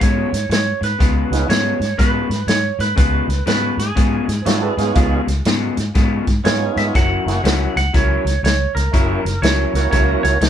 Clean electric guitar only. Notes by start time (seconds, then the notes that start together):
0.00 C#3 G#3 B3 F4
0.32 muted clean electric guitar stroke
0.50 muted clean electric guitar stroke
0.81 muted clean electric guitar stroke
0.99 C#3 G#3 B3 F4
1.32 muted clean electric guitar stroke
1.48 C#3 G#3 B3 F4
1.81 muted clean electric guitar stroke
1.98 C#3 G#3 B3 F4
2.30 muted clean electric guitar stroke
2.48 muted clean electric guitar stroke
2.79 muted clean electric guitar stroke
2.96 C#3 G#3 B3 F4
3.28 muted clean electric guitar stroke
3.46 C#3 G#3 B3 F4
3.78 muted clean electric guitar stroke
3.95 C#3 G#3 B3 F4
4.28 muted clean electric guitar stroke
4.45 muted clean electric guitar stroke
4.77 muted clean electric guitar stroke
4.96 C#3 G#3 B3 F4
5.28 muted clean electric guitar stroke
5.46 C#3 G#3 B3 F4
5.78 muted clean electric guitar stroke
5.95 C#3 G#3 B3 F4
6.27 muted clean electric guitar stroke
6.45 muted clean electric guitar stroke
6.77 muted clean electric guitar stroke
6.94 F#3 C#4 E4 A#4
7.26 muted clean electric guitar stroke
7.43 F#3 C#4 E4 A#4
7.76 muted clean electric guitar stroke
7.93 F#3 C#4 E4 A#4
8.26 muted clean electric guitar stroke
8.43 muted clean electric guitar stroke
8.75 muted clean electric guitar stroke
8.93 F#3 C#4 E4 A#4
9.25 muted clean electric guitar stroke
9.42 F#3 C#4 E4 A#4
9.74 muted clean electric guitar stroke
9.92 F#3 C#4 E4 A#4
10.24 muted clean electric guitar stroke
10.41 muted clean electric guitar stroke